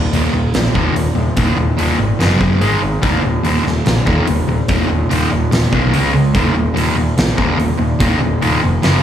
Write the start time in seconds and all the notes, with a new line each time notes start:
Already playing: D#2 A#2
0.13 D#1 D#2 A#2 D#3, open hi-hat
0.33 D#1 D#2 A#2
0.54 A#1 D#2 A#2, snare, open hi-hat
0.74 D#1 D#2 A#2 D#3, kick
0.94 D#1 D#2 A#2, open hi-hat
1.15 D#1 D#2 A#2
1.36 D#1 D#2 A#2 D#3, kick, open hi-hat
1.57 D#1 D#2 A#2
1.77 D#1 D#2 A#2 D#3, open hi-hat
1.99 G#1 D#2 A#2
2.19 F#1 F#2 C#3 F#3, snare, open hi-hat
2.39 F#1 F#2 C#3 F#3, kick
2.60 G#1 G#2 D#3 G#3, open hi-hat
2.82 G#1 G#2 D#3
3.02 D#1 D#2 A#2 D#3, kick, open hi-hat
3.22 D#1 D#2 A#2
3.43 D#1 D#2 A#2 D#3, open hi-hat
3.64 D#1 D#2 A#2, snare
3.85 A#1 D#2 A#2, snare, open hi-hat
4.05 D#1 D#2 A#2 D#3, kick
4.27 D#1 D#2 A#2, open hi-hat
4.47 D#1 D#2 A#2
4.68 D#1 D#2 A#2 D#3, kick, open hi-hat
4.89 D#1 D#2 A#2
5.10 D#1 D#2 A#2 D#3, open hi-hat
5.31 D#1 D#2 A#2
5.51 D#1 D#2 A#2, snare, open hi-hat
5.72 B1 D#2 A#2 D#3, kick
5.92 C#2 C#3 G#3 C#4, open hi-hat
6.14 C#2 C#3 G#3
6.34 D#1 D#2 A#2 D#3, kick, open hi-hat
6.54 D#1 D#2 A#2
6.74 D#1 D#2 A#2 D#3, open hi-hat
6.96 D#1 D#2 A#2
7.17 A#1 D#2 A#2, snare, open hi-hat
7.37 D#1 D#2 A#2 D#3, kick
7.57 D#1 D#2 A#2, open hi-hat
7.78 D#1 D#2 A#2
7.99 D#1 D#2 A#2 D#3, kick, open hi-hat
8.20 D#1 D#2 A#2
8.41 D#1 D#2 A#2 D#3, open hi-hat
8.63 F1 D#2 A#2
8.82 F#1 F#2 C#3 F#3, snare, open hi-hat